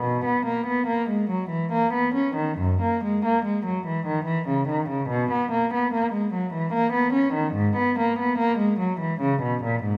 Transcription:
X:1
M:3/4
L:1/16
Q:1/4=73
K:F#mix
V:1 name="Cello" clef=bass
B,, B, A, B, A, G, F, E, A, B, C D, | F,, A, G, A, G, F, E, D, E, C, D, C, | B,, B, A, B, A, G, F, E, A, B, C D, | G,, B, A, B, A, G, F, E, C, B,, A,, G,, |]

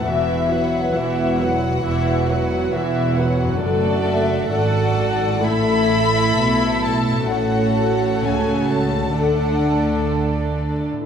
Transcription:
X:1
M:4/4
L:1/8
Q:1/4=66
K:Dlyd
V:1 name="Violin section"
e2 f4- f z | z e f2 b3 a | f2 g a f2 z2 |]
V:2 name="Violin section"
[Fe] [Bf] [Fe] [Bf] [Fe] [Bf] [Fe] [Bf] | [Ad]2 [Ad]2 [Ae]4 | [Ac]4 [Ad]4 |]
V:3 name="Viola section"
[E,E] [F,F] [E,E] [F,F] [E,E] [F,F] [E,E] [F,F] | [A,F]2 [FA]2 [A,E]4 | [A,F]4 [A,D]4 |]
V:4 name="Harp"
[E,,B,EF]8 | [F,,F,DA]4 [A,,A,EA]4 | [A,,A,CA]4 [D,A,DA]4 |]
V:5 name="Cello section" clef=bass
E,,2 E,,2 E,,2 E,,2 | F,,2 G,,2 A,,2 B,,2 | A,,2 C,2 D,4 |]
V:6 name="Double bass section" clef=bass
E,,,2 E,,,2 E,,,2 E,,,2 | F,,,2 G,,,2 A,,,2 B,,,2 | A,,,2 C,,2 D,,4 |]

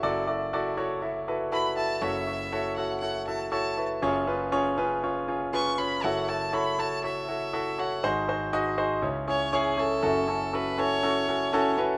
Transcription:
X:1
M:4/4
L:1/16
Q:1/4=120
K:F#m
V:1 name="Fiddle"
z12 b2 a2 | e6 f2 f2 a2 a3 z | z12 c'2 b2 | f2 a2 b2 a2 e6 f2 |
z8 z2 c2 G2 A2- | A4 B2 c8 z2 |]
V:2 name="Grand piano"
[EFAd]2 [EFAd]2 [EFAd]2 [EFAc]2 [EFAe]2 [EFAB]2 [EFAB]2 [EFAe]2 | [EFAc]2 [EFAe]2 [EFAc]2 [EFAc]2 [EFAc]2 [EFAe]2 [EFAc]2 [EFAB]2 | [C^EGc]2 [CEGB]2 [CEGc]2 [CEGB]2 [CEGc]2 [CEGc]2 [CEGB]2 [CEGc]2 | [EFAc]2 [EFAc]2 [EFAc]2 [EFAc]2 [EFAc]2 [EFAc]2 [EFAe]2 [EFAc]2 |
[^DFG^B]2 [DFGB]2 [DFG^d]2 [DFGB]2 [CEGc]2 [CEGc]2 [CEGc]2 [CEGc]2 | [CEFA]2 [CEFA]2 [CEFA]2 [CEFA]2 [CEFA]2 [CEFA]2 [CEFA]2 [CEFB]2 |]
V:3 name="Grand piano" clef=bass
[F,,,F,,]16 | [F,,,F,,]16 | [F,,,F,,]16 | [F,,,F,,]16 |
[G,,,G,,]8 [C,,C,]8 | [F,,,F,,]16 |]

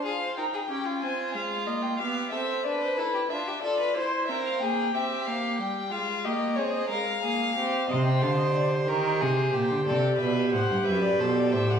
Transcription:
X:1
M:12/8
L:1/16
Q:3/8=61
K:Cphr
V:1 name="Violin"
f2 g4 a2 f2 e g f2 =e2 =d c =B2 e2 d2 | c2 =e f g2 e2 f2 g2 f2 _e2 d e f6 | e g f e =d c6- c d2 =e2 ^f2 e d c d e f |]
V:2 name="Violin"
A c B A G F6- F G2 =A2 =B2 A G F G A B | c2 B2 A2 G6 F2 G2 A2 B2 A2 G2 | c6 B2 A2 G2 =A2 =B2 c2 B2 A2 c2 |]
V:3 name="Viola"
F2 E2 D2 C2 A,2 B,2 =B,2 C2 =D2 =E2 D2 F2 | =E2 C2 B,2 C2 B,2 G,2 A,2 B,2 C2 A,2 B,2 C2 | G24 |]
V:4 name="Cello" clef=bass
z24 | z24 | C,2 =D,4 E,2 C,2 B,, D, C,2 =B,,2 =A,, G,, ^F,,2 B,,2 A,,2 |]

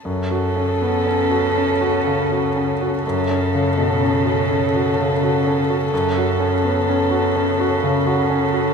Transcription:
X:1
M:3/4
L:1/16
Q:1/4=62
K:F#m
V:1 name="Violin"
A12 | A12 | A12 |]
V:2 name="Grand piano"
F,, F C B, C F C F C, F C F | F,, C C, B,, C F C F C, F C F | F,, F C B, C F C F C, F C F |]
V:3 name="Cello" clef=bass
C,12 | C,12 | C,12 |]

